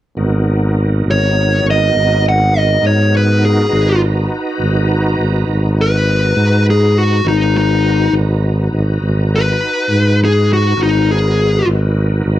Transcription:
0.17 G#1 B3 D#4 F#4 A#4
1.05 G#1
1.11 C#5
1.64 G#1
1.71 D#5
1.94 G#1
2.29 F#5
2.58 D#5
2.82 G#2
2.87 C#5
3.17 B4
3.45 G#4
3.69 G#1 D#4 F#4 B4 A#5
4.60 G#1
5.18 G#1
5.47 G#1
5.81 B4
6.36 G#2
6.70 G#4
6.98 F#4
7.24 G#1 D#4 F#4 B4 A#5
7.28 D#4
7.57 D#4
8.13 G#1
8.72 G#1
9.01 G#1
9.36 B4
9.89 G#2
10.25 G#4
10.53 F#4
10.76 G#1 D#4 F#4 A#4 B4
10.83 D#4
11.11 G#4
11.65 G#1
12.25 G#1

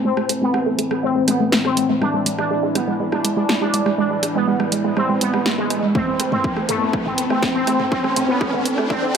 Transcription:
Already playing: A2 E3 A3 C4 E4 C5 A5 B5, riser
0.05 A3 C4 A4
0.17 A3, cross-stick
0.29 A3, closed hi-hat
0.42 A3 B3
0.54 A3, cross-stick
0.66 A3
0.79 A3, closed hi-hat
0.91 A3, cross-stick
1.03 A3 C4
1.16 A3
1.28 A3 B3, cross-stick, closed hi-hat
1.40 A3
1.52 A3, snare
1.65 A3 C4, cross-stick
1.77 A3, closed hi-hat
1.89 A3
2.01 G#3 D4 E4 B4 E5 G#5, cross-stick
2.14 G#3
2.26 G#3, closed hi-hat
2.38 G#3 D4, cross-stick
2.51 G#3
2.63 G#3
2.70 G#5
2.75 G#3 B3, cross-stick, closed hi-hat
2.88 G#3
3.00 G#3
3.12 G#3 D4, cross-stick
3.24 G#3, closed hi-hat
3.37 G#3 D4
3.49 G#3, cross-stick, snare
3.61 G#3 D4
3.74 G#3, closed hi-hat
3.86 G#3, cross-stick
3.98 G#3 D4 D5
4.11 G#3
4.23 G#3, cross-stick, closed hi-hat
4.35 G#3 B3
4.47 G#3
4.60 G#3, cross-stick
4.72 G#3, closed hi-hat
4.84 G#3
4.97 G#3 C4, cross-stick
5.09 G#3
5.21 G#3 B3, closed hi-hat
5.34 G#3, cross-stick
5.46 G#3, snare
5.58 G#3
5.70 G#3, cross-stick, closed hi-hat
5.83 G#3
5.95 A3 C4 C5, kick, mid tom
6.07 C4
6.15 A5
6.20 A3, cross-stick, closed hi-hat
6.32 A3 C4, mid tom
6.44 C4, kick
6.57 A3, cross-stick
6.69 A3, closed hi-hat, mid tom
6.81 C4
6.93 A3, kick, cross-stick
7.06 A3 C4, mid tom
7.18 C4, closed hi-hat
7.30 A3 C4, cross-stick
7.43 A3, kick, snare, mid tom
7.55 C4
7.67 A3, cross-stick, closed hi-hat
7.79 A3, mid tom
7.92 C4 A4, kick
8.04 A3, cross-stick
8.16 A3, closed hi-hat, mid tom
8.29 B3 C4
8.41 A3, kick, cross-stick
8.53 A3, mid tom
8.65 C4, closed hi-hat
8.78 A3, cross-stick
8.90 A3 C4, kick, mid tom
9.02 C4

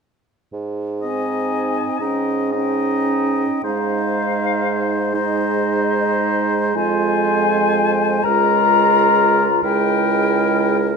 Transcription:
0.53 G#2
1.00 C4 D#4 D#5
1.04 G#5
2.00 G#2 C#4 D#4 D#5 G5
2.52 C#4 D#4 D#5
2.57 G5
3.63 G#2 G#3 D#4 C5 F5
5.14 G#3 D#4 C5 D#5
6.74 F2 G#3 F4 C5 G#5
8.23 C#2 G#3 F4 A#4 A#5
9.62 C#2 G#3 E4 A#4 G5

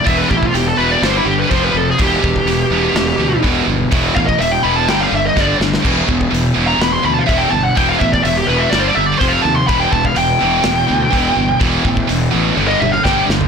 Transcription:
0.05 E1 E2 B2 E3 E5, kick, open hi-hat
0.18 B4
0.28 A1 E2 B2 G4, kick
0.37 E4
0.43 F4, kick
0.54 E1 E2 B2 G4, open hi-hat
0.66 A4
0.77 E1 E2 B2 E3 B4
0.91 D5
1.02 G1 G2 D3 G3 C5, snare, open hi-hat
1.17 E4
1.26 G1 G2 D3 G4
1.39 B4
1.50 F1 F2 C3 F3 C5, kick, open hi-hat
1.64 B4
1.74 F1 F2 C3 A4
1.91 G#4
1.98 E1 E2 B2 E3 G4, kick, open hi-hat
2.22 E1 E2 B2, kick
2.36 kick
2.46 E1 E2 B2, open hi-hat
2.70 E1 E2 B2 E3
2.94 E1 E2 B2, snare, open hi-hat
2.99 E3
3.18 D2 E2 B2
3.42 E1 E2 B2 E3, kick, open hi-hat
3.67 G1 E2 B2
3.91 E1 E2 B2 E3, kick, open hi-hat
4.15 A1 E2 B2 F5, kick
4.26 D#5, kick
4.40 E1 E2 B2 E5, open hi-hat
4.51 G5
4.63 E1 E2 B2 E3 B5
4.76 A5
4.88 G1 G2 D3 G3 G5, snare, open hi-hat
5.00 F5
5.12 G1 G2 D3 E5
5.26 D#5
5.35 G1 G2 D3 G3, kick, snare
5.40 D5
5.60 G1 G2 D3, snare
5.74 snare
5.84 E1 E2 B2 E3, kick, crash
6.08 E1 E2 B2, kick
6.21 kick
6.31 E1 E2 B2, open hi-hat
6.55 E1 E2 B2 E3
6.68 A#5
6.79 E1 E2 B2 E3 B5, snare, open hi-hat
6.93 C6
7.04 D2 E2 B2 B5
7.14 A5
7.18 F5
7.26 E1 E2 B2 E3 E5, kick, open hi-hat
7.38 G5
7.51 G1 E2 B2 A5
7.64 F#5
7.76 E1 E2 B2 E3 G5, kick, open hi-hat
7.89 F5
7.99 A1 E2 B2 E5, kick
8.13 D5, kick
8.23 E1 E2 B2 E5, open hi-hat
8.37 G4
8.47 E1 E2 B2 E3 B4
8.58 E5
8.70 G1 G2 D3 G3 D5, snare, open hi-hat
8.79 C5
8.88 D5
8.95 G1 G2 D3 E5
9.06 D5
9.18 F1 F2 C3 F3 C5, kick, open hi-hat
9.28 F5
9.42 D#2 F2 C3 A5
9.55 C6
9.67 E1 E2 B2 E3 B5, kick, open hi-hat
9.80 G5
9.92 E1 E2 B2 A5, kick
10.05 F5, kick
10.15 E1 E2 B2 G5, open hi-hat
10.38 E2 B2 E3
10.43 E1
10.64 E1 E2 B2 E3, snare, open hi-hat
10.87 D2 E2 B2
11.11 E1 E2 B2 E3, kick, open hi-hat
11.36 G1 E2 B2
11.59 E1 E2 B2 E3, kick, open hi-hat
11.84 A1 E2 B2, kick
11.97 kick
12.08 E1 E2 B2, open hi-hat
12.31 A1 E2 B2 E3
12.56 G1 G2 D3 G3, high tom
12.68 D#5
12.79 G1 G2 D3 E5, mid tom
12.91 F5, mid tom
13.03 G1 G2 D3 G3 G5, kick, snare
13.28 G1 G2 D3, snare
13.41 floor tom

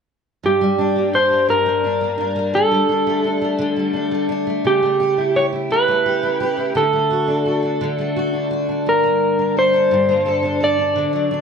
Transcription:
0.43 G2 G4
0.61 G3
0.78 D4
0.96 A#3
1.13 D4 C5
1.30 A#3
1.48 G2 A#4
1.66 G3
1.84 D4
2.01 A#3
2.18 D4
2.36 A#3
2.54 D3 A4
2.71 G3
2.89 D4
3.07 A3
3.24 D4
3.41 A3
3.59 D3
3.76 G3
3.93 D4
4.11 A3
4.29 D4
4.47 A3
4.65 C#3 G4
4.82 A3
5.00 G4
5.18 E4
5.36 G4 C#5
5.53 E4
5.70 C#3 B4
5.88 A3
6.06 G4
6.23 E4
6.40 G4
6.57 E4
6.75 D3 A4
6.93 A3
7.10 F#4
7.28 D4
7.46 F#4
7.63 D4
7.81 D3
7.98 A3
8.16 F#4
8.33 D4
8.51 F#4
8.69 D4
8.86 G2 A#4
9.03 A#3
9.39 D4
9.57 A4 C5
9.73 D4
9.91 G2
10.09 A#3
10.26 A4
10.42 D4
10.60 A4 D5
10.78 D4
10.96 D3
11.13 F#3
11.31 D4

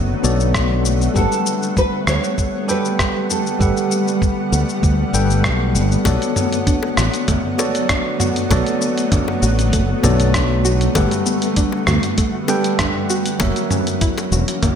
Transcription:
Already playing: F#1 D3 F#3 A3 B3 F#4 A4 C#5 D5 F#5
0.23 B1 B3 F#4 A4 C#5 D5, shaker
0.40 shaker
0.55 kick, cross-stick, shaker
0.85 shaker
1.02 shaker
1.14 G1 G3 B3 G4 A4 B4 F#5, kick, shaker
1.18 A4
1.32 shaker
1.47 shaker
1.63 shaker
1.77 B4, kick, shaker
2.07 D2 C#5, cross-stick, shaker
2.24 shaker
2.38 kick, shaker
2.68 G3 G4 A4 B4 G5, shaker
2.85 shaker
2.99 kick, cross-stick, shaker
3.30 A4, shaker
3.47 shaker
3.59 G1 G3 G4 A4 B4 F#5, kick, shaker
3.77 shaker
3.92 shaker
4.08 shaker
4.22 kick, shaker
4.52 D2, shaker
4.69 shaker
4.83 D2, kick, shaker
5.13 G1 G3 G4 A4 B4 G5, shaker
5.30 shaker
5.44 B1, kick, cross-stick, shaker
5.75 G1, shaker
5.92 shaker
6.04 B1 D3 F#3 A3 B3 F#4 A4 C#5 D5, kick, closed hi-hat, high bongo, shaker
6.22 closed hi-hat, shaker
6.36 B3, mid tom, shaker
6.53 closed hi-hat, shaker
6.67 D4, kick, closed hi-hat, shaker
6.83 high bongo
6.97 A1 F#4, cross-stick, shaker
7.14 closed hi-hat, shaker
7.28 A3, kick, closed hi-hat, mid tom, shaker
7.58 B3 F#4 A4 C#5 D5, high bongo, shaker
7.75 closed hi-hat, shaker
7.89 D4, kick, cross-stick, closed hi-hat, shaker
8.20 F#4, mid tom, shaker
8.36 closed hi-hat, shaker
8.49 B1 A3 B3 F#4 A4 C#5 D5, kick, closed hi-hat, high bongo, shaker
8.67 closed hi-hat, shaker
8.81 B3, shaker
8.98 closed hi-hat, shaker
9.12 D4, kick, closed hi-hat, mid tom, shaker
9.28 high bongo
9.42 A1 F#4, shaker
9.59 closed hi-hat, shaker
9.73 F#1 A3, kick, closed hi-hat, shaker
10.03 B1 B3 F#4 A4 C#5 D5, mid tom, high bongo, shaker
10.20 closed hi-hat, shaker
10.34 D4, kick, cross-stick, closed hi-hat, shaker
10.65 F#4, shaker
10.81 closed hi-hat, shaker
10.94 G1 G3 A3 G4 A4 B4 F#5, kick, closed hi-hat, mid tom, high bongo, shaker
11.11 closed hi-hat, shaker
11.26 B3, shaker
11.42 closed hi-hat, shaker
11.56 D4, kick, closed hi-hat, shaker
11.72 high bongo
11.87 D2 F#4, cross-stick, mid tom, shaker
12.03 closed hi-hat, shaker
12.18 A3, kick, closed hi-hat, shaker
12.48 G3 B3 G4 A4 B4 G5, high bongo, shaker
12.64 closed hi-hat, shaker
12.79 D4, kick, cross-stick, closed hi-hat, mid tom, shaker
13.10 F#4, shaker
13.26 closed hi-hat, shaker
13.39 F#1 E3 F#3 A#3 C#4 F#4 A#4 C#5 E5, kick, closed hi-hat, high bongo, shaker
13.56 closed hi-hat, shaker
13.70 C#4, mid tom, shaker
13.87 closed hi-hat, shaker
14.01 E4, kick, closed hi-hat, shaker
14.18 closed hi-hat, high bongo, shaker
14.32 E1 F#4, shaker
14.48 closed hi-hat, shaker
14.63 A#3, kick, closed hi-hat, mid tom, shaker

